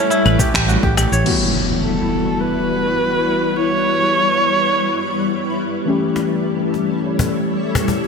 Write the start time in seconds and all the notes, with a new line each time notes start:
Already playing: G3 A3 C#4 E4 F#4 A4 B4 C#5 C#6
0.10 E4, cabasa
0.25 A1 B4, cajon slap, claves
0.39 G4, kick, cajon bass, cabasa
0.54 A1 G4, finger snap, kick, cabasa
0.68 F#4, cabasa
0.83 A1 G4, kick, cajon slap
0.97 G4, cajon slap, cabasa, claves
1.12 A1 C#5, cabasa
1.24 E3 G3 B3 E4 F#4 B4, crash, impact
1.83 A4
2.41 B4
3.57 C#5
5.85 E3 A3 C#4 E4 G4 A4 C#5
6.16 cajon slap
6.74 cajon slap
7.19 cajon bass
7.75 cajon bass, cajon slap
7.88 cajon bass
8.04 cajon slap